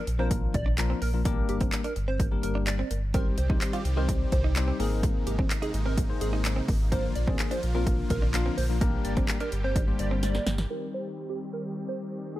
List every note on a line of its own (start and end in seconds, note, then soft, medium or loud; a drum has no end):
0.07 0.47 A#1 medium
0.07 muted clean electric guitar stroke soft
0.07 closed hi-hat medium
0.19 0.54 F3 medium
0.19 0.54 A#3 medium
0.19 0.28 C4 medium
0.19 0.54 D4 medium
0.19 0.54 F4 medium
0.19 0.54 A#4 medium
0.19 0.28 C5 medium
0.31 0.40 A#3 medium
0.31 kick loud
0.31 closed hi-hat loud
0.54 0.94 A#1 loud
0.54 0.72 D5 medium
0.54 muted clean electric guitar stroke soft
0.54 kick loud
0.54 closed hi-hat medium
0.66 0.75 D4 medium
0.78 0.99 F3 medium
0.78 0.99 A#3 medium
0.78 0.99 D4 medium
0.78 0.99 F4 medium
0.78 0.99 A#4 loud
0.78 muted clean electric guitar stroke soft
0.78 clap loud
0.78 closed hi-hat loud
0.90 0.99 C4 medium
1.02 1.42 A#1 loud
1.02 1.10 A#3 medium
1.02 1.11 A#4 medium
1.02 open hi-hat medium
1.13 1.20 F3 medium
1.13 1.20 A#3 medium
1.13 1.21 D4 medium
1.13 1.21 F4 medium
1.13 1.21 A#4 medium
1.25 1.81 G3 medium
1.25 1.81 A#3 medium
1.25 1.34 A#3 medium
1.25 1.81 D4 medium
1.25 1.81 G4 medium
1.25 1.81 A#4 loud
1.25 kick loud
1.25 closed hi-hat loud
1.49 1.69 G1 loud
1.49 1.58 G4 medium
1.49 muted clean electric guitar stroke soft
1.49 closed hi-hat medium
1.61 1.70 C4 medium
1.61 kick medium
1.61 closed hi-hat medium
1.72 clap loud
1.72 closed hi-hat medium
1.84 1.93 D4 medium
1.84 1.93 A#4 medium
1.84 closed hi-hat medium
1.96 2.36 G1 loud
1.96 muted clean electric guitar stroke soft
1.96 closed hi-hat medium
2.08 2.17 C4 medium
2.08 2.25 C5 medium
2.20 2.28 A#3 medium
2.20 kick loud
2.20 closed hi-hat loud
2.31 2.80 G3 medium
2.31 2.80 A#3 medium
2.31 2.80 D4 medium
2.31 2.80 G4 medium
2.31 2.80 A#4 medium
2.43 2.83 G1 loud
2.43 2.52 A#4 medium
2.43 muted clean electric guitar stroke soft
2.43 closed hi-hat medium
2.55 2.64 D4 medium
2.67 3.00 D5 medium
2.67 muted clean electric guitar stroke soft
2.67 clap loud
2.67 closed hi-hat loud
2.79 2.88 C4 medium
2.91 3.31 G1 medium
2.91 3.00 A#3 medium
2.91 closed hi-hat medium
3.14 4.78 D#3 medium
3.14 3.35 G3 medium
3.14 4.78 G3 medium
3.14 3.35 C4 medium
3.14 3.23 C4 medium
3.14 4.78 C4 medium
3.14 3.35 D#4 medium
3.14 3.35 G4 medium
3.14 4.78 G4 medium
3.14 3.32 A#4 loud
3.14 3.35 C5 medium
3.14 kick loud
3.14 closed hi-hat loud
3.38 3.58 C2 loud
3.38 3.55 C5 medium
3.38 muted clean electric guitar stroke soft
3.38 closed hi-hat medium
3.49 3.77 G3 medium
3.49 3.77 C4 medium
3.49 3.58 D#4 medium
3.49 3.78 D#4 medium
3.49 3.78 G4 medium
3.49 3.78 C5 medium
3.49 kick loud
3.61 clap loud
3.61 closed hi-hat medium
3.73 3.82 F4 medium
3.73 3.82 G4 medium
3.73 closed hi-hat medium
3.85 4.25 C2 medium
3.85 muted clean electric guitar stroke soft
3.85 closed hi-hat medium
3.97 4.32 G3 medium
3.97 4.32 C4 medium
3.97 4.32 D#4 medium
3.97 4.06 D#4 medium
3.97 4.32 G4 medium
3.97 4.06 A#4 medium
3.97 4.32 C5 loud
4.09 4.17 C4 medium
4.09 kick loud
4.09 closed hi-hat loud
4.32 4.72 C2 loud
4.32 4.50 C5 medium
4.32 muted clean electric guitar stroke soft
4.32 kick medium
4.32 closed hi-hat medium
4.44 4.53 D#4 medium
4.56 4.77 G3 medium
4.56 4.77 C4 medium
4.56 4.77 D#4 medium
4.56 4.77 G4 medium
4.56 4.77 C5 medium
4.56 muted clean electric guitar stroke soft
4.56 clap loud
4.56 closed hi-hat loud
4.68 4.76 C4 medium
4.79 5.20 G#1 loud
4.79 6.90 C3 medium
4.79 6.90 G#3 medium
4.79 5.55 A#3 medium
4.79 4.88 A#3 medium
4.79 10.66 A#3 medium
4.79 5.55 C4 medium
4.79 5.55 D#4 medium
4.79 6.90 D#4 loud
4.79 4.88 G#4 medium
4.79 5.55 G#4 medium
4.79 5.55 A#4 medium
4.79 open hi-hat medium
5.03 5.12 G#3 medium
5.03 kick loud
5.03 closed hi-hat loud
5.27 5.47 G#1 loud
5.27 5.36 G4 medium
5.27 muted clean electric guitar stroke soft
5.27 closed hi-hat medium
5.39 5.47 C4 medium
5.39 kick loud
5.50 clap loud
5.50 closed hi-hat medium
5.62 5.71 D#4 medium
5.62 5.71 G#4 medium
5.62 closed hi-hat medium
5.74 6.14 G#1 loud
5.74 muted clean electric guitar stroke soft
5.74 closed hi-hat medium
5.86 5.94 C4 medium
5.86 6.03 A#4 medium
5.97 6.06 A#3 medium
5.97 kick medium
5.97 closed hi-hat loud
6.09 6.58 A#3 medium
6.09 6.58 C4 medium
6.09 6.58 D#4 medium
6.09 6.58 G#4 medium
6.09 6.58 C5 medium
6.21 6.61 G#1 loud
6.21 6.30 G#4 medium
6.21 muted clean electric guitar stroke soft
6.21 closed hi-hat medium
6.33 6.42 D#4 medium
6.45 muted clean electric guitar stroke soft
6.45 clap loud
6.45 closed hi-hat loud
6.56 6.65 C4 medium
6.68 7.09 G#1 loud
6.68 6.77 A#3 medium
6.68 kick medium
6.68 open hi-hat medium
6.92 10.66 D3 medium
6.92 7.13 F3 medium
6.92 8.79 F3 medium
6.92 7.01 A#3 medium
6.92 7.13 A#3 medium
6.92 7.13 D4 medium
6.92 8.79 F4 medium
6.92 7.13 F4 medium
6.92 7.13 A#4 medium
6.92 7.10 C5 loud
6.92 kick loud
6.92 closed hi-hat loud
7.16 7.36 A#1 loud
7.16 7.33 D5 medium
7.16 muted clean electric guitar stroke soft
7.16 closed hi-hat medium
7.27 7.55 F3 medium
7.27 7.55 A#3 medium
7.27 7.36 C4 medium
7.27 7.55 D4 medium
7.27 7.56 F4 medium
7.27 7.56 G#4 medium
7.27 kick loud
7.39 clap loud
7.39 closed hi-hat medium
7.51 7.60 D4 medium
7.51 7.60 C5 medium
7.51 closed hi-hat medium
7.63 8.03 A#1 loud
7.63 muted clean electric guitar stroke soft
7.63 closed hi-hat medium
7.75 8.10 F3 medium
7.75 8.10 A#3 medium
7.75 7.84 C4 medium
7.75 8.10 D4 medium
7.75 8.10 F4 medium
7.75 7.84 A#4 medium
7.75 8.10 A#4 loud
7.87 7.95 A#3 medium
7.87 kick loud
7.87 closed hi-hat loud
8.10 8.50 A#1 loud
8.10 8.28 A#4 medium
8.10 muted clean electric guitar stroke soft
8.10 kick medium
8.10 closed hi-hat medium
8.22 8.31 D4 medium
8.34 8.55 F3 medium
8.34 8.55 A#3 medium
8.34 8.55 D4 medium
8.34 8.55 F4 medium
8.34 8.55 A#4 loud
8.34 muted clean electric guitar stroke soft
8.34 clap loud
8.34 closed hi-hat loud
8.46 8.55 C4 medium
8.57 8.98 A#1 loud
8.57 8.66 A#3 medium
8.57 8.66 C5 medium
8.57 open hi-hat medium
8.69 8.76 F3 medium
8.69 8.76 A#3 medium
8.69 8.76 D4 medium
8.69 8.76 F4 medium
8.69 8.76 A#4 medium
8.81 9.37 G3 medium
8.81 10.68 G3 medium
8.81 9.37 A#3 medium
8.81 8.90 A#3 medium
8.81 9.37 D4 medium
8.81 9.37 G4 medium
8.81 10.68 G4 medium
8.81 9.37 A#4 loud
8.81 kick loud
8.81 closed hi-hat loud
9.04 9.25 G1 medium
9.04 9.13 D5 medium
9.04 muted clean electric guitar stroke soft
9.04 closed hi-hat medium
9.17 9.25 C4 medium
9.17 kick loud
9.17 closed hi-hat medium
9.28 clap loud
9.28 closed hi-hat medium
9.40 9.49 D4 medium
9.40 9.49 A#4 medium
9.40 closed hi-hat medium
9.52 9.92 G1 loud
9.52 muted clean electric guitar stroke soft
9.52 closed hi-hat medium
9.64 9.73 C4 medium
9.64 9.82 C5 medium
9.76 9.85 D4 medium
9.76 kick loud
9.76 closed hi-hat loud
9.87 10.36 G3 medium
9.87 10.36 A#3 medium
9.87 10.36 D4 medium
9.87 10.36 G4 medium
9.87 10.36 C5 medium
9.99 10.39 G1 loud
9.99 10.08 D5 medium
9.99 muted clean electric guitar stroke soft
9.99 closed hi-hat medium
10.11 10.20 C4 medium
10.23 10.56 D5 medium
10.23 muted clean electric guitar stroke soft
10.23 snare medium
10.23 closed hi-hat loud
10.35 10.44 A#3 medium
10.35 snare medium
10.47 10.67 G1 loud
10.47 10.55 A#3 medium
10.47 snare loud
10.47 closed hi-hat medium
10.58 snare loud
10.70 12.40 D#3 medium
10.70 12.32 G3 medium
10.70 12.34 G3 medium
10.70 12.32 C4 medium
10.70 12.40 C4 medium
10.70 12.32 D#4 medium
10.70 12.34 G4 medium
10.70 12.33 G4 medium
10.70 10.88 A#4 loud
10.94 11.11 C5 medium
11.29 11.38 G4 medium
11.53 11.62 A#4 medium
11.89 12.06 C5 medium
12.35 12.40 A#3 medium
12.35 12.40 C4 medium
12.35 12.40 D#4 medium
12.35 12.40 G#4 medium